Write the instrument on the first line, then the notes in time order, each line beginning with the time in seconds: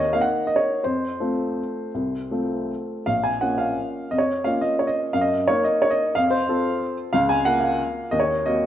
upright piano
Already playing: D#2 D#5
0.13 A#3 D#4 A#4 F5
0.21 F#5
0.47 D#5
0.56 C#5
0.84 F2 C5
1.20 A3 C4 F4
1.94 C2
2.31 A3 C4 F4
3.06 A#1 F5
3.24 G#5
3.41 A#3 C#4 F4 F#5
3.58 F5
4.11 F2 D#5
4.18 C#5
4.44 A#3 C#4 F4 F5
4.61 D#5
4.79 C#5
4.87 D#5
5.13 F#2 F5
5.21 D#5
5.48 A#3 D#4 A#4 C#5
5.64 D#5
5.82 C#5
5.91 D#5
6.15 F2 F5
6.31 C5
6.49 C4 F4 A4
7.13 C#2 F5
7.29 G#5
7.45 A#3 F4 A#4 F#5
7.60 F5
8.11 D#2 D#5
8.20 C#5
8.46 A#3 F#4 A#4 D#5